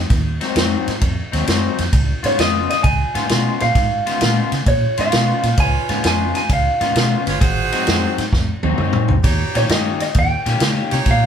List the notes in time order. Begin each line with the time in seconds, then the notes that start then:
Already playing: D#5
0.10 D#2, kick, snare, ride
0.41 G#2 F#3 C4 D#4, snare, ride
0.56 F2 G#2 F#3 C4 D#4, snare, ride
0.88 G#2, snare, ride
1.01 F2, kick, ride
1.32 D#2 G#2 F#3 C4 D#4, snare, ride
1.46 F#2 G#2 F#3 C4 D#4, snare, ride
1.78 F2, snare, ride
1.93 C#2, kick, ride
2.23 G#2 C#3 G#3 B3 F4 C#5, snare, ride
2.38 F2 C#3 G#3 B3 F4 D#5, snare, ride
2.70 D#5, snare, ride
2.83 C#2 G#5, kick, ride
3.15 G#2 C#3 G#3 B3 F4, snare, ride
3.29 B2 C#3 G#3 B3 F4, snare, ride
3.60 A#2 F5, snare, ride
3.75 G#2, kick, snare, ride
4.06 C#3 G#3 B3 F4, snare, ride
4.21 A#2 C#3 G#3 B3 F4, snare, ride
4.52 C#3, snare, ride
4.66 A#2 C#5, kick, ride
4.97 G#2 C#3 G#3 B3 F4 F5, snare, ride
5.12 B2 C#3 G#3 B3 F4, snare, ride
5.43 A#2, snare, ride
5.57 C#2 F4 B4 C#5 G#5, kick, ride
5.89 G#2 C#3 G#3 B3 F4, snare, ride
6.04 F2 C#3 G#3 B3 F4 G#5, snare, ride
6.35 G#5, snare, ride
6.49 C#2 F5, kick, ride
6.81 G#2 C#3 G#3 B3 F4, snare, ride
6.96 B2 C#3 G#3 B3 F4, snare, ride
7.26 G1 F4 B4 C#5, snare, ride
7.41 G#1 F#4 G#4 C5, kick, ride
7.72 G#2 F#3 C4 D#4, snare, ride
7.87 F2 G#2 F#3 C4 D#4, snare, ride
8.18 G#2, snare, ride
8.33 F2, kick, snare
8.63 D#2 G#2 F#3 C4 D#4, high tom
8.78 F#2 G#2 F#3 C4 D#4, mid tom
8.93 mid tom
9.08 C#2, floor tom
9.23 D#2 D#4 G4 C#5, kick, snare, ride
9.55 A#2 D#3 A#3 C#4 G4 C#5, snare, ride
9.69 G2 D#3 A#3 C#4 G4 D#5, snare, ride
10.00 D#5, snare, ride
10.14 D#2, kick, ride
10.19 G5
10.46 A#2 D#3 A#3 C#4 G4, snare, ride
10.60 C#3 D#3 A#3 C#4 G4, snare, ride
10.91 C3 D#4 G4 C#5, snare, ride
11.06 A#2, kick, snare, ride
11.11 F5